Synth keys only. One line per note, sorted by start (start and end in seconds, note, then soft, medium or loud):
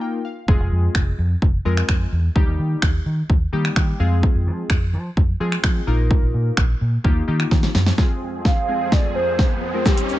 0.00 0.20 A#3 medium
0.00 0.20 D#4 medium
0.00 0.20 F4 medium
0.00 0.20 A#4 medium
0.00 0.23 G5 medium
0.25 0.47 F5 medium
0.48 1.04 G#3 medium
0.48 1.04 C4 medium
0.48 1.04 F4 medium
0.48 1.04 G#4 medium
1.65 2.07 G#3 medium
1.65 2.07 C4 medium
1.65 2.07 F4 medium
1.65 2.07 A#4 medium
2.35 2.91 G3 medium
2.35 2.91 A#3 medium
2.35 2.91 D#4 medium
2.35 2.92 G4 loud
3.53 3.95 G3 medium
3.53 3.95 A#3 medium
3.53 3.95 D#4 medium
3.53 3.95 G4 loud
3.76 3.98 G5 medium
4.00 4.75 G#3 medium
4.00 4.75 C4 medium
4.00 4.75 F4 medium
4.00 4.75 G#4 loud
4.00 4.22 F5 medium
5.40 5.82 G#3 medium
5.40 5.82 C4 medium
5.40 5.82 F4 medium
5.40 5.82 G#4 loud
5.87 6.62 A#3 medium
5.87 6.62 D#4 medium
5.87 6.62 F4 medium
5.87 6.62 A#4 loud
7.04 7.23 A#3 medium
7.04 7.23 D#4 medium
7.04 7.23 F4 medium
7.04 7.23 G4 loud
7.28 7.70 A#3 medium
7.28 7.70 D#4 medium
7.28 7.70 F4 medium
7.28 7.70 G4 loud
7.98 8.40 G#3 medium
7.98 8.40 C4 medium
7.98 8.40 F4 medium
7.98 8.40 G#4 medium
8.68 9.24 G#3 medium
8.68 9.24 C4 medium
8.68 9.24 F4 medium
8.68 9.24 G#4 medium
9.74 9.81 G#3 medium
9.74 9.81 C4 medium
9.74 9.81 F4 medium
9.74 9.81 A#4 medium
9.85 10.19 G3 medium
9.85 10.19 A#3 medium
9.85 10.19 D#4 medium
9.85 10.19 G4 medium